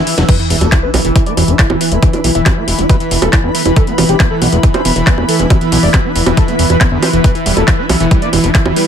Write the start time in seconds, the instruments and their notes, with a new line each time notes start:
Already playing: synth drone E3, ambient pad E4 B4 E6, swell
0.07 acid bass E3, open hi-hat
0.18 analog synth bass E1, acid bass F#3, snare, closed hi-hat
0.29 synth drone E3, acid bass E3, ambient pad E4, analog synth lead B4, kick, closed hi-hat, crash, sub drop
0.36 acid bass E3, analog synth lead E4, ambient pad B4, closed hi-hat
0.41 ambient pad B5
0.50 analog synth bass E1, acid bass E3, analog synth lead E4, open hi-hat
0.61 analog synth bass E1, acid bass B3, analog synth lead A4, closed hi-hat, high bongo
0.72 acid bass E3, analog synth lead E4, kick, clap, closed hi-hat
0.83 acid bass E4, analog synth lead B4
0.94 analog synth bass B1, acid bass E3, wobble bass B3, analog synth lead E4, open hi-hat, high bongo
1.05 analog synth bass E1, acid bass E3, wobble bass B3, analog synth lead E4, closed hi-hat
1.16 acid bass E3, analog synth lead E4, kick, closed hi-hat
1.26 acid bass B3, analog synth lead D5, closed hi-hat
1.37 analog synth bass E1, acid bass E3, analog synth lead E4, open hi-hat, high bongo
1.48 analog synth bass E1, acid bass E4, closed hi-hat
1.59 acid bass E3, analog synth lead E4, kick, clap, closed hi-hat
1.70 analog synth bass E1, acid bass E3, analog synth lead E4, high bongo
1.81 acid bass E3, analog synth lead B4, open hi-hat
1.92 analog synth bass E1, acid bass B3, analog synth lead E4, closed hi-hat
2.02 acid bass E3, wobble bass D4, kick, closed hi-hat
2.13 wobble bass D4, analog synth lead E4, acid bass E4, closed hi-hat, high bongo
2.24 analog synth bass B1, acid bass E3, analog synth lead E4, open hi-hat
2.35 analog synth bass E1, acid bass E3, analog synth lead E5, closed hi-hat
2.46 acid bass E3, analog synth lead E4, kick, clap, closed hi-hat, high bongo
2.57 acid bass B3, analog synth lead E4
2.68 analog synth bass E1, acid bass E3, wobble bass E4, open hi-hat
2.79 analog synth bass E1, wobble bass E4, analog synth lead E4, acid bass E4, closed hi-hat
2.89 acid bass E3, analog synth lead B4, kick, closed hi-hat, high bongo
3.00 acid bass E3, analog synth lead E4, closed hi-hat
3.11 analog synth bass E1, acid bass E3, analog synth lead E4, open hi-hat
3.22 analog synth bass E1, acid bass B3, analog synth lead A4, closed hi-hat, high bongo
3.33 acid bass E3, analog synth lead E4, kick, clap, closed hi-hat
3.44 analog synth bass E2, acid bass E4, analog synth lead E4
3.55 acid bass E3, analog synth lead B4, open hi-hat
3.66 analog synth bass E1, acid bass E3, analog synth lead E4, closed hi-hat, high bongo
3.76 acid bass E3, analog synth lead A4, kick, closed hi-hat
3.87 acid bass B3, analog synth lead B3, closed hi-hat
3.98 analog synth bass E1, acid bass E3, analog synth lead B3, open hi-hat, high bongo
4.09 analog synth bass E1, acid bass E4, analog synth lead G4, closed hi-hat
4.20 acid bass E3, analog synth lead B3, kick, clap, closed hi-hat
4.31 acid bass E3, analog synth lead A4
4.42 analog synth bass B1, acid bass E3, analog synth lead B3, open hi-hat, high bongo
4.52 analog synth bass E1, acid bass B3, analog synth lead B3, closed hi-hat
4.63 acid bass E3, analog synth lead B3, kick, closed hi-hat
4.74 acid bass E4, analog synth lead C5, closed hi-hat, high bongo
4.85 analog synth bass E1, acid bass E3, analog synth lead B3, open hi-hat
4.96 analog synth bass E1, acid bass E3, closed hi-hat
5.07 acid bass E3, analog synth lead B3, kick, clap, closed hi-hat
5.18 analog synth bass E1, acid bass B3, analog synth lead B3, high bongo
5.29 acid bass E3, analog synth lead A4, open hi-hat
5.39 analog synth bass E1, analog synth lead B3, acid bass E4, closed hi-hat
5.50 acid bass E3, kick, closed hi-hat, high bongo
5.61 acid bass E3, analog synth lead B3, closed hi-hat
5.72 analog synth bass B1, acid bass E3, analog synth lead B3, open hi-hat
5.83 analog synth bass E1, acid bass B3, analog synth lead D5, open hi-hat
5.94 acid bass E3, analog synth lead B3, kick, clap, closed hi-hat, high bongo
6.05 analog synth lead B3, acid bass E4
6.16 analog synth bass E1, acid bass E3, open hi-hat
6.26 analog synth bass E1, acid bass E3, analog synth lead B3, closed hi-hat, high bongo
6.37 acid bass E3, analog synth lead A4, kick, closed hi-hat
6.48 acid bass B3, analog synth lead B3, closed hi-hat
6.59 analog synth bass E1, acid bass E3, analog synth lead B3, open hi-hat
6.70 analog synth bass E1, acid bass E3, analog synth lead B4, closed hi-hat, high bongo
6.81 acid bass E3, analog synth lead B3, kick, clap, closed hi-hat
6.92 analog synth bass E2, acid bass D3, analog synth lead B3
7.02 acid bass E3, analog synth lead C5, open hi-hat, high bongo
7.13 analog synth bass E1, acid bass E3, analog synth lead B3, closed hi-hat
7.24 acid bass E3, analog synth lead B4, kick, closed hi-hat
7.35 acid bass E3, analog synth lead E4, ambient pad G5, closed hi-hat
7.46 analog synth bass E1, acid bass G3, analog synth lead E4, open hi-hat
7.57 analog synth bass E1, acid bass B3, analog synth lead A4, closed hi-hat, high bongo
7.68 acid bass E3, analog synth lead E4, kick, clap, closed hi-hat
7.79 acid bass E4, analog synth lead B4
7.89 analog synth bass B1, acid bass E3, wobble bass B3, analog synth lead E4, open hi-hat, high bongo
8.00 analog synth bass E1, acid bass E3, wobble bass B3, analog synth lead E4, closed hi-hat
8.11 acid bass G3, kick, closed hi-hat
8.22 acid bass B3, analog synth lead D5, closed hi-hat
8.33 analog synth bass E1, acid bass E3, analog synth lead E4, open hi-hat, high bongo
8.44 analog synth bass E1, acid bass E4, closed hi-hat
8.55 acid bass E3, analog synth lead E4, kick, clap, closed hi-hat
8.65 analog synth bass E1, acid bass E3, analog synth lead E4, high bongo
8.76 acid bass G3, analog synth lead B4, open hi-hat